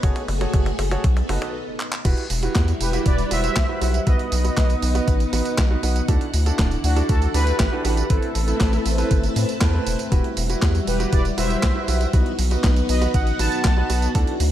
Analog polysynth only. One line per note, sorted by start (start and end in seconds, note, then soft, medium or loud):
2.81 3.05 G4 medium
2.81 3.06 B4 medium
3.06 3.30 B4 medium
3.06 3.32 D5 loud
3.32 4.03 C5 medium
3.32 4.09 E5 loud
4.08 5.55 B4 medium
4.08 5.54 D#5 loud
6.84 7.08 D4 medium
6.84 7.09 F#4 medium
7.09 7.33 F#4 medium
7.09 7.35 A4 loud
7.35 8.07 G4 medium
7.35 8.12 B4 loud
8.10 9.58 E4 medium
8.10 9.57 A4 loud
10.88 11.11 G4 medium
10.88 11.12 B4 medium
11.13 11.25 B4 medium
11.13 11.24 D5 loud
11.38 12.10 C5 medium
11.38 12.10 E5 loud
12.89 13.13 B4 medium
12.89 13.14 D#5 medium
13.14 13.38 D#5 medium
13.14 13.39 F#5 loud
13.39 14.11 F#5 medium
13.39 14.11 A5 loud